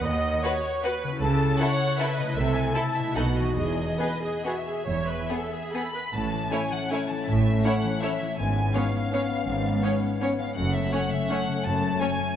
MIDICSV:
0, 0, Header, 1, 8, 480
1, 0, Start_track
1, 0, Key_signature, 4, "major"
1, 0, Tempo, 387597
1, 47, Time_signature, 3, 2, 24, 8
1, 3410, Tempo, 423729
1, 7250, Tempo, 373134
1, 7251, Key_signature, 3, "major"
1, 11090, Tempo, 360144
1, 15398, End_track
2, 0, Start_track
2, 0, Title_t, "Violin section"
2, 0, Program_c, 0, 48
2, 0, Note_on_c, 0, 78, 59
2, 787, Note_off_c, 0, 78, 0
2, 1497, Note_on_c, 0, 81, 66
2, 1945, Note_off_c, 0, 81, 0
2, 1987, Note_on_c, 0, 78, 74
2, 2467, Note_on_c, 0, 76, 60
2, 2471, Note_off_c, 0, 78, 0
2, 2700, Note_on_c, 0, 75, 58
2, 2703, Note_off_c, 0, 76, 0
2, 2922, Note_on_c, 0, 76, 68
2, 2929, Note_off_c, 0, 75, 0
2, 3153, Note_on_c, 0, 80, 62
2, 3157, Note_off_c, 0, 76, 0
2, 3405, Note_on_c, 0, 81, 59
2, 3406, Note_off_c, 0, 80, 0
2, 3635, Note_on_c, 0, 76, 60
2, 3642, Note_off_c, 0, 81, 0
2, 3871, Note_on_c, 0, 78, 53
2, 3873, Note_off_c, 0, 76, 0
2, 4101, Note_on_c, 0, 75, 48
2, 4108, Note_off_c, 0, 78, 0
2, 4318, Note_off_c, 0, 75, 0
2, 4332, Note_on_c, 0, 75, 53
2, 5311, Note_off_c, 0, 75, 0
2, 5333, Note_on_c, 0, 76, 39
2, 6784, Note_on_c, 0, 83, 49
2, 6786, Note_off_c, 0, 76, 0
2, 7216, Note_off_c, 0, 83, 0
2, 7254, Note_on_c, 0, 81, 57
2, 7727, Note_on_c, 0, 80, 62
2, 7735, Note_off_c, 0, 81, 0
2, 7980, Note_off_c, 0, 80, 0
2, 7987, Note_on_c, 0, 78, 59
2, 8230, Note_on_c, 0, 80, 52
2, 8232, Note_off_c, 0, 78, 0
2, 8464, Note_on_c, 0, 81, 51
2, 8473, Note_off_c, 0, 80, 0
2, 8703, Note_off_c, 0, 81, 0
2, 8710, Note_on_c, 0, 76, 54
2, 9182, Note_on_c, 0, 78, 57
2, 9184, Note_off_c, 0, 76, 0
2, 9669, Note_off_c, 0, 78, 0
2, 9677, Note_on_c, 0, 76, 56
2, 10135, Note_on_c, 0, 80, 55
2, 10136, Note_off_c, 0, 76, 0
2, 10597, Note_off_c, 0, 80, 0
2, 10610, Note_on_c, 0, 77, 60
2, 12544, Note_off_c, 0, 77, 0
2, 12774, Note_on_c, 0, 77, 51
2, 12988, Note_off_c, 0, 77, 0
2, 13001, Note_on_c, 0, 78, 64
2, 13230, Note_off_c, 0, 78, 0
2, 13236, Note_on_c, 0, 76, 57
2, 13478, Note_on_c, 0, 78, 59
2, 13484, Note_off_c, 0, 76, 0
2, 13730, Note_on_c, 0, 76, 64
2, 13736, Note_off_c, 0, 78, 0
2, 13984, Note_off_c, 0, 76, 0
2, 13989, Note_on_c, 0, 78, 59
2, 14456, Note_off_c, 0, 78, 0
2, 14456, Note_on_c, 0, 81, 62
2, 14923, Note_off_c, 0, 81, 0
2, 14927, Note_on_c, 0, 80, 67
2, 15398, Note_off_c, 0, 80, 0
2, 15398, End_track
3, 0, Start_track
3, 0, Title_t, "Violin section"
3, 0, Program_c, 1, 48
3, 538, Note_on_c, 1, 66, 42
3, 538, Note_on_c, 1, 71, 43
3, 637, Note_off_c, 1, 66, 0
3, 637, Note_off_c, 1, 71, 0
3, 1037, Note_on_c, 1, 71, 39
3, 1039, Note_on_c, 1, 66, 41
3, 1136, Note_off_c, 1, 71, 0
3, 1138, Note_off_c, 1, 66, 0
3, 1983, Note_on_c, 1, 69, 39
3, 1987, Note_on_c, 1, 64, 42
3, 2082, Note_off_c, 1, 69, 0
3, 2086, Note_off_c, 1, 64, 0
3, 2474, Note_on_c, 1, 69, 40
3, 2480, Note_on_c, 1, 64, 41
3, 2574, Note_off_c, 1, 69, 0
3, 2579, Note_off_c, 1, 64, 0
3, 3403, Note_on_c, 1, 64, 36
3, 3406, Note_on_c, 1, 69, 38
3, 3494, Note_off_c, 1, 64, 0
3, 3497, Note_off_c, 1, 69, 0
3, 3875, Note_on_c, 1, 63, 35
3, 3878, Note_on_c, 1, 69, 35
3, 3966, Note_off_c, 1, 63, 0
3, 3969, Note_off_c, 1, 69, 0
3, 4823, Note_on_c, 1, 59, 32
3, 4824, Note_on_c, 1, 68, 34
3, 4914, Note_off_c, 1, 59, 0
3, 4915, Note_off_c, 1, 68, 0
3, 5334, Note_on_c, 1, 68, 27
3, 5335, Note_on_c, 1, 59, 29
3, 5424, Note_off_c, 1, 68, 0
3, 5426, Note_off_c, 1, 59, 0
3, 6290, Note_on_c, 1, 68, 30
3, 6294, Note_on_c, 1, 59, 29
3, 6380, Note_off_c, 1, 68, 0
3, 6385, Note_off_c, 1, 59, 0
3, 6797, Note_on_c, 1, 68, 28
3, 6800, Note_on_c, 1, 59, 30
3, 6888, Note_off_c, 1, 68, 0
3, 6891, Note_off_c, 1, 59, 0
3, 7742, Note_on_c, 1, 73, 36
3, 7745, Note_on_c, 1, 64, 36
3, 7844, Note_off_c, 1, 73, 0
3, 7847, Note_off_c, 1, 64, 0
3, 8247, Note_on_c, 1, 73, 34
3, 8248, Note_on_c, 1, 64, 33
3, 8350, Note_off_c, 1, 73, 0
3, 8351, Note_off_c, 1, 64, 0
3, 9185, Note_on_c, 1, 73, 39
3, 9187, Note_on_c, 1, 64, 36
3, 9288, Note_off_c, 1, 73, 0
3, 9290, Note_off_c, 1, 64, 0
3, 9669, Note_on_c, 1, 64, 35
3, 9670, Note_on_c, 1, 73, 37
3, 9771, Note_off_c, 1, 64, 0
3, 9773, Note_off_c, 1, 73, 0
3, 10599, Note_on_c, 1, 73, 33
3, 10600, Note_on_c, 1, 61, 35
3, 10702, Note_off_c, 1, 73, 0
3, 10703, Note_off_c, 1, 61, 0
3, 11089, Note_on_c, 1, 61, 33
3, 11090, Note_on_c, 1, 73, 33
3, 11196, Note_off_c, 1, 61, 0
3, 11196, Note_off_c, 1, 73, 0
3, 12037, Note_on_c, 1, 61, 41
3, 12037, Note_on_c, 1, 73, 40
3, 12143, Note_off_c, 1, 61, 0
3, 12144, Note_off_c, 1, 73, 0
3, 12551, Note_on_c, 1, 73, 36
3, 12552, Note_on_c, 1, 61, 36
3, 12658, Note_off_c, 1, 61, 0
3, 12658, Note_off_c, 1, 73, 0
3, 13488, Note_on_c, 1, 61, 38
3, 13489, Note_on_c, 1, 73, 36
3, 13595, Note_off_c, 1, 61, 0
3, 13595, Note_off_c, 1, 73, 0
3, 13997, Note_on_c, 1, 61, 41
3, 13997, Note_on_c, 1, 73, 36
3, 14103, Note_off_c, 1, 61, 0
3, 14104, Note_off_c, 1, 73, 0
3, 14923, Note_on_c, 1, 61, 40
3, 14923, Note_on_c, 1, 73, 40
3, 15029, Note_off_c, 1, 61, 0
3, 15030, Note_off_c, 1, 73, 0
3, 15398, End_track
4, 0, Start_track
4, 0, Title_t, "Viola section"
4, 0, Program_c, 2, 48
4, 37, Note_on_c, 2, 75, 48
4, 521, Note_off_c, 2, 75, 0
4, 526, Note_on_c, 2, 73, 48
4, 1022, Note_on_c, 2, 71, 51
4, 1033, Note_off_c, 2, 73, 0
4, 1498, Note_on_c, 2, 69, 48
4, 1501, Note_off_c, 2, 71, 0
4, 1969, Note_off_c, 2, 69, 0
4, 1974, Note_on_c, 2, 73, 52
4, 2464, Note_on_c, 2, 71, 50
4, 2465, Note_off_c, 2, 73, 0
4, 2923, Note_on_c, 2, 69, 44
4, 2928, Note_off_c, 2, 71, 0
4, 3407, Note_off_c, 2, 69, 0
4, 3409, Note_on_c, 2, 64, 42
4, 3877, Note_off_c, 2, 64, 0
4, 3879, Note_on_c, 2, 66, 39
4, 4341, Note_on_c, 2, 68, 37
4, 4343, Note_off_c, 2, 66, 0
4, 4765, Note_off_c, 2, 68, 0
4, 4821, Note_on_c, 2, 71, 39
4, 5062, Note_off_c, 2, 71, 0
4, 5076, Note_on_c, 2, 68, 38
4, 5328, Note_off_c, 2, 68, 0
4, 5330, Note_on_c, 2, 66, 36
4, 5421, Note_off_c, 2, 66, 0
4, 5578, Note_on_c, 2, 68, 40
4, 5801, Note_on_c, 2, 73, 47
4, 5807, Note_off_c, 2, 68, 0
4, 6034, Note_off_c, 2, 73, 0
4, 6038, Note_on_c, 2, 71, 40
4, 6285, Note_off_c, 2, 71, 0
4, 6292, Note_on_c, 2, 69, 38
4, 6536, Note_on_c, 2, 68, 42
4, 6541, Note_off_c, 2, 69, 0
4, 6778, Note_on_c, 2, 69, 38
4, 6786, Note_off_c, 2, 68, 0
4, 7026, Note_off_c, 2, 69, 0
4, 7027, Note_on_c, 2, 71, 35
4, 7115, Note_off_c, 2, 71, 0
4, 7732, Note_on_c, 2, 57, 37
4, 7733, Note_on_c, 2, 61, 35
4, 7835, Note_off_c, 2, 57, 0
4, 7836, Note_off_c, 2, 61, 0
4, 8234, Note_on_c, 2, 61, 33
4, 8238, Note_on_c, 2, 57, 32
4, 8337, Note_off_c, 2, 61, 0
4, 8341, Note_off_c, 2, 57, 0
4, 9189, Note_on_c, 2, 57, 37
4, 9189, Note_on_c, 2, 61, 32
4, 9292, Note_off_c, 2, 57, 0
4, 9292, Note_off_c, 2, 61, 0
4, 9670, Note_on_c, 2, 57, 37
4, 9673, Note_on_c, 2, 61, 36
4, 9773, Note_off_c, 2, 57, 0
4, 9776, Note_off_c, 2, 61, 0
4, 10606, Note_on_c, 2, 59, 37
4, 10608, Note_on_c, 2, 61, 37
4, 10709, Note_off_c, 2, 59, 0
4, 10711, Note_off_c, 2, 61, 0
4, 11085, Note_on_c, 2, 59, 36
4, 11089, Note_on_c, 2, 61, 39
4, 11192, Note_off_c, 2, 59, 0
4, 11196, Note_off_c, 2, 61, 0
4, 12035, Note_on_c, 2, 59, 35
4, 12035, Note_on_c, 2, 61, 36
4, 12142, Note_off_c, 2, 59, 0
4, 12142, Note_off_c, 2, 61, 0
4, 12540, Note_on_c, 2, 59, 37
4, 12543, Note_on_c, 2, 61, 37
4, 12646, Note_off_c, 2, 59, 0
4, 12649, Note_off_c, 2, 61, 0
4, 13479, Note_on_c, 2, 57, 35
4, 13479, Note_on_c, 2, 61, 37
4, 13586, Note_off_c, 2, 57, 0
4, 13586, Note_off_c, 2, 61, 0
4, 13983, Note_on_c, 2, 61, 34
4, 13985, Note_on_c, 2, 57, 38
4, 14090, Note_off_c, 2, 61, 0
4, 14092, Note_off_c, 2, 57, 0
4, 14926, Note_on_c, 2, 57, 37
4, 14927, Note_on_c, 2, 61, 42
4, 15032, Note_off_c, 2, 57, 0
4, 15034, Note_off_c, 2, 61, 0
4, 15398, End_track
5, 0, Start_track
5, 0, Title_t, "French horn section"
5, 0, Program_c, 3, 60
5, 7244, Note_on_c, 3, 57, 45
5, 7250, Note_on_c, 3, 61, 44
5, 10077, Note_off_c, 3, 57, 0
5, 10080, Note_off_c, 3, 61, 0
5, 10127, Note_on_c, 3, 61, 41
5, 10130, Note_on_c, 3, 59, 42
5, 12950, Note_off_c, 3, 61, 0
5, 12994, Note_on_c, 3, 57, 47
5, 12995, Note_on_c, 3, 61, 43
5, 13005, Note_off_c, 3, 59, 0
5, 15398, Note_off_c, 3, 57, 0
5, 15398, Note_off_c, 3, 61, 0
5, 15398, End_track
6, 0, Start_track
6, 0, Title_t, "Harp"
6, 0, Program_c, 4, 46
6, 0, Note_on_c, 4, 51, 35
6, 0, Note_on_c, 4, 59, 27
6, 0, Note_on_c, 4, 66, 31
6, 0, Note_on_c, 4, 71, 29
6, 1283, Note_on_c, 4, 49, 46
6, 1336, Note_on_c, 4, 61, 36
6, 1391, Note_on_c, 4, 64, 36
6, 1412, Note_off_c, 4, 51, 0
6, 1439, Note_off_c, 4, 59, 0
6, 1447, Note_on_c, 4, 69, 38
6, 1468, Note_off_c, 4, 66, 0
6, 1496, Note_off_c, 4, 71, 0
6, 2709, Note_on_c, 4, 48, 40
6, 2769, Note_on_c, 4, 57, 37
6, 2807, Note_off_c, 4, 64, 0
6, 2822, Note_on_c, 4, 64, 33
6, 2837, Note_off_c, 4, 49, 0
6, 2864, Note_off_c, 4, 61, 0
6, 2865, Note_off_c, 4, 69, 0
6, 2880, Note_on_c, 4, 69, 35
6, 3678, Note_on_c, 4, 47, 38
6, 3711, Note_off_c, 4, 57, 0
6, 3724, Note_on_c, 4, 57, 33
6, 3778, Note_on_c, 4, 63, 31
6, 3796, Note_off_c, 4, 48, 0
6, 3828, Note_on_c, 4, 66, 32
6, 3847, Note_off_c, 4, 64, 0
6, 4145, Note_on_c, 4, 52, 31
6, 4195, Note_on_c, 4, 56, 28
6, 4246, Note_on_c, 4, 59, 27
6, 4261, Note_off_c, 4, 47, 0
6, 4284, Note_off_c, 4, 57, 0
6, 4296, Note_on_c, 4, 68, 28
6, 4311, Note_off_c, 4, 63, 0
6, 4336, Note_off_c, 4, 66, 0
6, 4338, Note_off_c, 4, 69, 0
6, 7168, Note_off_c, 4, 52, 0
6, 7193, Note_off_c, 4, 56, 0
6, 7218, Note_off_c, 4, 59, 0
6, 7243, Note_off_c, 4, 68, 0
6, 7250, Note_on_c, 4, 45, 40
6, 7489, Note_on_c, 4, 52, 32
6, 7735, Note_on_c, 4, 73, 37
6, 7966, Note_off_c, 4, 52, 0
6, 7981, Note_on_c, 4, 52, 34
6, 8230, Note_on_c, 4, 57, 34
6, 8463, Note_off_c, 4, 52, 0
6, 8479, Note_on_c, 4, 52, 33
6, 8693, Note_off_c, 4, 45, 0
6, 8708, Note_on_c, 4, 45, 44
6, 8931, Note_off_c, 4, 57, 0
6, 8946, Note_on_c, 4, 57, 29
6, 9173, Note_off_c, 4, 73, 0
6, 9188, Note_on_c, 4, 73, 38
6, 9421, Note_off_c, 4, 52, 0
6, 9437, Note_on_c, 4, 52, 34
6, 9661, Note_off_c, 4, 57, 0
6, 9676, Note_on_c, 4, 57, 35
6, 9895, Note_off_c, 4, 52, 0
6, 9910, Note_on_c, 4, 52, 33
6, 10133, Note_on_c, 4, 44, 42
6, 10150, Note_off_c, 4, 45, 0
6, 10153, Note_off_c, 4, 52, 0
6, 10153, Note_off_c, 4, 57, 0
6, 10364, Note_on_c, 4, 56, 32
6, 10591, Note_off_c, 4, 73, 0
6, 10606, Note_on_c, 4, 73, 40
6, 10846, Note_off_c, 4, 56, 0
6, 10862, Note_on_c, 4, 56, 32
6, 11097, Note_on_c, 4, 59, 33
6, 11316, Note_off_c, 4, 56, 0
6, 11332, Note_on_c, 4, 56, 33
6, 11547, Note_off_c, 4, 44, 0
6, 11563, Note_on_c, 4, 44, 43
6, 11787, Note_off_c, 4, 59, 0
6, 11803, Note_on_c, 4, 59, 30
6, 12037, Note_off_c, 4, 73, 0
6, 12053, Note_on_c, 4, 73, 37
6, 12284, Note_off_c, 4, 56, 0
6, 12300, Note_on_c, 4, 56, 30
6, 12526, Note_off_c, 4, 59, 0
6, 12542, Note_on_c, 4, 59, 37
6, 12755, Note_off_c, 4, 56, 0
6, 12771, Note_on_c, 4, 56, 34
6, 13000, Note_on_c, 4, 42, 42
6, 13020, Note_off_c, 4, 56, 0
6, 13024, Note_off_c, 4, 59, 0
6, 13025, Note_off_c, 4, 44, 0
6, 13234, Note_on_c, 4, 49, 30
6, 13469, Note_off_c, 4, 73, 0
6, 13485, Note_on_c, 4, 73, 38
6, 13725, Note_off_c, 4, 49, 0
6, 13741, Note_on_c, 4, 49, 31
6, 13983, Note_on_c, 4, 57, 36
6, 14212, Note_off_c, 4, 49, 0
6, 14228, Note_on_c, 4, 49, 31
6, 14442, Note_off_c, 4, 42, 0
6, 14458, Note_on_c, 4, 42, 41
6, 14668, Note_off_c, 4, 57, 0
6, 14684, Note_on_c, 4, 57, 36
6, 14911, Note_off_c, 4, 73, 0
6, 14927, Note_on_c, 4, 73, 37
6, 15155, Note_off_c, 4, 49, 0
6, 15171, Note_on_c, 4, 49, 33
6, 15398, Note_off_c, 4, 42, 0
6, 15398, Note_off_c, 4, 49, 0
6, 15398, Note_off_c, 4, 57, 0
6, 15398, Note_off_c, 4, 73, 0
6, 15398, End_track
7, 0, Start_track
7, 0, Title_t, "Cello section"
7, 0, Program_c, 5, 48
7, 43, Note_on_c, 5, 39, 52
7, 440, Note_off_c, 5, 39, 0
7, 1500, Note_on_c, 5, 49, 53
7, 1897, Note_off_c, 5, 49, 0
7, 2925, Note_on_c, 5, 48, 53
7, 3323, Note_off_c, 5, 48, 0
7, 3871, Note_on_c, 5, 47, 41
7, 4262, Note_off_c, 5, 47, 0
7, 4335, Note_on_c, 5, 40, 42
7, 4737, Note_off_c, 5, 40, 0
7, 5806, Note_on_c, 5, 40, 40
7, 6202, Note_off_c, 5, 40, 0
7, 7242, Note_on_c, 5, 45, 47
7, 7645, Note_off_c, 5, 45, 0
7, 8705, Note_on_c, 5, 45, 47
7, 9100, Note_off_c, 5, 45, 0
7, 10132, Note_on_c, 5, 44, 49
7, 10522, Note_off_c, 5, 44, 0
7, 11556, Note_on_c, 5, 44, 49
7, 11957, Note_off_c, 5, 44, 0
7, 13005, Note_on_c, 5, 42, 47
7, 13400, Note_off_c, 5, 42, 0
7, 14449, Note_on_c, 5, 42, 54
7, 14838, Note_off_c, 5, 42, 0
7, 15398, End_track
8, 0, Start_track
8, 0, Title_t, "Double bass section"
8, 0, Program_c, 6, 48
8, 41, Note_on_c, 6, 39, 50
8, 419, Note_off_c, 6, 39, 0
8, 1504, Note_on_c, 6, 37, 58
8, 1879, Note_off_c, 6, 37, 0
8, 2928, Note_on_c, 6, 36, 50
8, 3304, Note_off_c, 6, 36, 0
8, 3878, Note_on_c, 6, 35, 44
8, 4246, Note_off_c, 6, 35, 0
8, 4342, Note_on_c, 6, 28, 41
8, 4721, Note_off_c, 6, 28, 0
8, 5810, Note_on_c, 6, 28, 39
8, 6184, Note_off_c, 6, 28, 0
8, 7253, Note_on_c, 6, 33, 49
8, 7651, Note_off_c, 6, 33, 0
8, 8709, Note_on_c, 6, 33, 52
8, 9102, Note_off_c, 6, 33, 0
8, 10130, Note_on_c, 6, 32, 50
8, 10521, Note_off_c, 6, 32, 0
8, 11558, Note_on_c, 6, 32, 49
8, 11958, Note_off_c, 6, 32, 0
8, 13008, Note_on_c, 6, 30, 54
8, 13401, Note_off_c, 6, 30, 0
8, 14451, Note_on_c, 6, 30, 50
8, 14839, Note_off_c, 6, 30, 0
8, 15398, End_track
0, 0, End_of_file